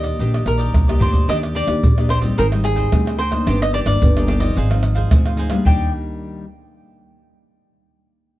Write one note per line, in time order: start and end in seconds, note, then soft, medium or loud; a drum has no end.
0.00 0.11 D#2 medium
0.00 0.17 A#2 medium
0.00 0.16 A#3 medium
0.00 0.16 D4 medium
0.00 0.16 G4 medium
0.00 0.17 D5 medium
0.00 0.69 D#5 medium
0.00 pandeiro medium
0.00 maracas medium
0.04 0.18 G4 medium
0.04 0.17 D#5 medium
0.19 0.42 A#1 medium
0.19 0.72 D#3 soft
0.19 0.43 A#3 medium
0.19 0.32 D4 soft
0.19 0.43 D4 soft
0.19 0.32 G4 soft
0.19 0.43 G4 medium
0.19 0.33 D5 soft
0.19 0.33 D#5 soft
0.19 pandeiro medium
0.19 maracas medium
0.19 surdo medium
0.34 0.45 G4 soft
0.34 0.46 D5 medium
0.34 0.46 D#5 medium
0.34 pandeiro soft
0.34 tamborim medium
0.34 maracas soft
0.46 0.71 A#1 medium
0.46 0.72 A#3 medium
0.46 0.72 D4 soft
0.46 0.72 G4 medium
0.46 1.03 A#4 medium
0.46 muted cavaquinho stroke soft
0.46 pandeiro medium
0.46 tamborim medium
0.58 0.86 G4 soft
0.58 0.85 D5 medium
0.58 0.86 D#5 medium
0.58 pandeiro medium
0.58 maracas medium
0.74 0.99 C2 medium
0.74 pandeiro medium
0.74 tamborim medium
0.74 maracas medium
0.74 surdo loud
0.88 1.25 A#3 medium
0.88 1.25 D4 medium
0.88 1.25 G4 medium
0.88 0.99 G4 medium
0.88 1.00 D5 medium
0.88 1.00 D#5 medium
0.88 pandeiro soft
0.88 tamborim medium
0.88 maracas soft
0.99 1.25 D2 medium
0.99 1.13 D4 medium
0.99 1.13 G4 medium
0.99 1.27 C5 medium
0.99 1.11 D5 medium
0.99 1.12 D#5 medium
0.99 surdo medium
0.99 pandeiro medium
1.12 1.27 G4 soft
1.12 1.26 D5 soft
1.12 1.27 D#5 soft
1.12 pandeiro medium
1.12 maracas medium
1.12 surdo medium
1.28 1.63 D#2 medium
1.28 1.81 D#3 medium
1.28 1.54 A#3 soft
1.28 1.41 D4 medium
1.28 1.54 D4 soft
1.28 1.41 G4 medium
1.28 1.55 G4 medium
1.28 1.42 D5 medium
1.28 1.37 D#5 loud
1.28 1.42 D#5 medium
1.28 pandeiro medium
1.28 tamborim medium
1.28 maracas medium
1.28 surdo medium
1.43 1.54 G4 soft
1.43 1.55 D5 soft
1.43 1.55 D#5 soft
1.43 pandeiro soft
1.43 tamborim medium
1.43 maracas soft
1.55 1.67 D4 medium
1.55 1.67 G4 medium
1.55 2.10 D5 loud
1.55 1.68 D5 medium
1.55 1.67 D#5 medium
1.55 pandeiro medium
1.67 1.80 D#2 medium
1.67 1.92 A#3 medium
1.67 1.92 D4 medium
1.67 1.92 G4 medium
1.67 muted cavaquinho stroke soft
1.67 pandeiro medium
1.67 tamborim medium
1.67 maracas medium
1.67 surdo soft
1.83 2.30 A#1 medium
1.83 2.35 A#2 medium
1.83 pandeiro medium
1.83 maracas medium
1.83 surdo medium
1.98 2.20 A#3 medium
1.98 2.20 D4 medium
1.98 2.21 G4 medium
1.98 2.09 G4 soft
1.98 2.10 D5 soft
1.98 2.10 D#5 soft
1.98 pandeiro soft
1.98 tamborim medium
1.98 maracas soft
2.09 2.23 D4 soft
2.09 2.22 G4 medium
2.09 2.17 C5 medium
2.09 2.20 D5 soft
2.09 2.22 D#5 medium
2.09 pandeiro medium
2.09 tamborim medium
2.21 2.46 G3 medium
2.21 2.46 C4 medium
2.21 2.46 D#4 medium
2.21 2.36 G4 medium
2.21 2.35 D5 medium
2.21 2.36 D#5 medium
2.21 pandeiro medium
2.21 maracas medium
2.21 surdo soft
2.37 2.84 G#1 medium
2.37 2.90 G#2 medium
2.37 2.51 G#4 medium
2.37 2.46 A#4 medium
2.37 2.51 C5 medium
2.37 2.51 D#5 medium
2.37 2.52 G5 medium
2.37 pandeiro medium
2.37 maracas medium
2.37 surdo medium
2.51 2.88 G3 medium
2.51 2.88 C4 medium
2.51 2.89 D#4 medium
2.51 2.64 C5 soft
2.51 2.64 D#5 soft
2.51 2.64 G5 soft
2.51 pandeiro soft
2.51 tamborim medium
2.51 maracas soft
2.64 3.16 G#4 medium
2.64 muted cavaquinho stroke soft
2.64 pandeiro medium
2.64 tamborim medium
2.64 maracas medium
2.76 3.05 C5 medium
2.76 3.04 D#5 medium
2.76 3.04 G5 medium
2.76 pandeiro medium
2.76 maracas medium
2.76 surdo soft
2.92 3.39 D2 medium
2.92 3.18 G3 medium
2.92 3.18 C4 medium
2.92 3.18 D#4 medium
2.92 pandeiro medium
2.92 tamborim medium
2.92 maracas medium
2.92 surdo loud
3.06 3.18 C5 soft
3.06 3.19 D#5 soft
3.06 3.19 G5 soft
3.06 pandeiro soft
3.06 tamborim medium
3.06 maracas soft
3.18 3.32 G#4 medium
3.18 3.57 C5 medium
3.18 3.32 C5 medium
3.18 3.31 D#5 medium
3.18 3.30 G5 medium
3.18 pandeiro medium
3.18 maracas medium
3.31 3.83 D#3 medium
3.31 3.83 A#3 medium
3.31 3.84 D4 medium
3.31 3.46 C5 soft
3.31 3.46 D#5 soft
3.31 3.45 G5 medium
3.31 pandeiro medium
3.31 tamborim medium
3.31 maracas medium
3.31 surdo soft
3.47 3.82 G1 loud
3.47 3.99 G2 medium
3.47 3.60 D4 medium
3.47 3.60 G4 medium
3.47 3.60 D5 medium
3.47 3.60 D#5 medium
3.47 pandeiro medium
3.47 tamborim medium
3.47 maracas medium
3.47 surdo medium
3.61 3.73 G4 soft
3.61 3.74 D5 medium
3.61 3.73 D#5 medium
3.61 3.74 D#5 soft
3.61 pandeiro soft
3.61 tamborim medium
3.61 maracas soft
3.73 3.85 D4 medium
3.73 3.85 G4 medium
3.73 3.79 D5 medium
3.73 3.86 D5 medium
3.73 3.86 D#5 medium
3.73 pandeiro medium
3.73 maracas medium
3.86 3.98 G1 medium
3.86 4.10 D#3 medium
3.86 4.11 A#3 medium
3.86 4.11 D4 medium
3.86 4.38 D5 loud
3.86 muted cavaquinho stroke soft
3.86 pandeiro medium
3.86 tamborim medium
3.86 maracas medium
3.86 surdo soft
4.02 4.48 G1 loud
4.02 4.54 G2 medium
4.02 pandeiro medium
4.02 maracas medium
4.02 surdo loud
4.16 4.39 D#3 medium
4.16 4.39 A#3 medium
4.16 4.40 D4 medium
4.16 4.28 G4 soft
4.16 4.29 D5 medium
4.16 4.28 D#5 soft
4.16 pandeiro soft
4.16 tamborim medium
4.16 maracas soft
4.28 4.41 D4 soft
4.28 4.41 G4 medium
4.28 4.39 D5 medium
4.28 4.40 D#5 medium
4.28 pandeiro medium
4.28 tamborim medium
4.40 4.65 F3 medium
4.40 4.65 C4 medium
4.40 4.65 D#4 medium
4.40 4.55 G4 medium
4.40 4.54 D5 medium
4.40 5.33 D#5 medium
4.40 4.55 D#5 medium
4.40 pandeiro medium
4.40 maracas medium
4.40 surdo soft
4.56 5.03 G#1 loud
4.56 5.08 G#2 medium
4.56 4.69 D#4 medium
4.56 4.69 G#4 medium
4.56 4.70 C5 medium
4.56 4.69 F5 medium
4.56 pandeiro medium
4.56 maracas medium
4.56 surdo medium
4.70 5.07 F3 medium
4.70 5.07 C4 medium
4.70 5.08 D#4 medium
4.70 4.81 G#4 soft
4.70 4.82 C5 soft
4.70 4.83 F5 soft
4.70 pandeiro soft
4.70 tamborim medium
4.70 maracas soft
4.82 muted cavaquinho stroke soft
4.82 pandeiro medium
4.82 tamborim medium
4.82 maracas medium
4.95 5.24 G#4 medium
4.95 5.23 C5 medium
4.95 5.23 F5 medium
4.95 pandeiro medium
4.95 maracas medium
4.95 surdo soft
5.11 5.58 D2 medium
5.11 5.64 G#2 medium
5.11 5.48 F3 medium
5.11 5.49 C4 medium
5.11 5.49 D#4 medium
5.11 pandeiro medium
5.11 tamborim medium
5.11 maracas medium
5.11 surdo loud
5.26 5.37 G#4 soft
5.26 5.38 C5 soft
5.26 5.38 F5 soft
5.26 pandeiro soft
5.26 tamborim medium
5.26 maracas soft
5.37 5.51 D#4 medium
5.37 5.51 G#4 medium
5.37 5.50 C5 medium
5.37 5.48 F5 medium
5.37 pandeiro medium
5.37 maracas medium
5.49 5.65 G3 medium
5.49 5.66 A#3 medium
5.49 5.66 D4 medium
5.49 5.65 G#4 soft
5.49 5.64 C5 soft
5.49 5.64 F5 medium
5.49 pandeiro medium
5.49 tamborim medium
5.49 maracas medium
5.49 surdo soft
5.65 5.92 D#2 medium
5.65 6.44 D#3 medium
5.65 6.44 G3 medium
5.65 6.44 A#3 medium
5.65 5.88 D4 medium
5.65 6.44 D4 medium
5.65 5.88 G4 medium
5.65 5.89 D5 medium
5.65 5.88 D#5 medium
5.65 5.92 G5 medium
5.65 surdo medium